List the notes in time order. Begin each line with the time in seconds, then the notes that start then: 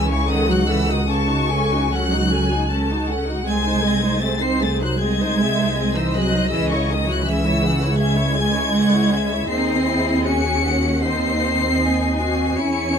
Already playing: C#2 G#4 G#5 E6
0.10 C#3 E4 C#5 C#6
0.29 D#3 C#4 A4 F#5 D#6
0.48 F#3 D#4 F#4 F#6
0.68 E3 C#4 A4 E6
0.88 D#3 D#4 F#4 D#6
1.08 C#3 C#4 A4 A5 C#6
1.28 D#4 F#4
1.49 C#4 A4 G#5
1.72 D#4 F#4
1.91 F#3 C#4 A4 F#5 F#6
2.11 D#4 F#4
2.30 C#4 A4 G#5
2.50 D#4 F#4
2.69 C#4 A4 A5
2.88 D#4 F#4
3.08 C#4 A4 F#5
3.27 D#4 F#4
3.45 C2 G#3 C4 G#4 G#5 G#6
3.64 D#4 C5
3.82 C4 G#4 D#5
4.02 D#4 C5
4.21 A3 C4 G#4 C5 A6
4.40 C4 D#4 C5 C7
4.60 A3 C4 G#4 A6
4.80 F#3 D#4 C5 F#6
4.99 G#3 C4 G#4 D#5 G#6
5.20 D#4 C5
5.39 C4 G#4 E5
5.59 D#4 C5
5.78 C4 G#4 D#5
5.95 E3 D#4 C5 E6
6.15 F#3 C4 G#4 F#6
6.33 D#4 C5
6.51 C#2 E3 C#4 G#4 E6
6.70 C#3 E4 C#5 C#6
6.89 D#3 C#4 G#4 D#6
7.07 F#3 E4 C#5 F#6
7.26 E3 C#4 G#4 E5 E6
7.45 E4 C#5
7.63 C#4 G#4 F#5
7.80 E4 C#5
7.98 G#3 C#4 G#4 E5 G#6
8.17 E4 C#5
8.34 C#4 G#4 G#5
8.53 E4 C#5
8.73 C#4 G#4 F#5
8.92 E4 C#5
9.11 C#4 G#4 E5
9.31 E4 C#5
9.49 D#2 C4 D#4 G#4 D#5 C7
9.86 E4
10.25 C#4 F#4 G#5 C#7
10.68 F#5
11.03 C4 D#4 C5 D#5 C7
11.41 C5
11.79 D#4 D#5 G#5
12.18 C4 F#4 C7
12.57 E2 C#4 E4 C#5 C#7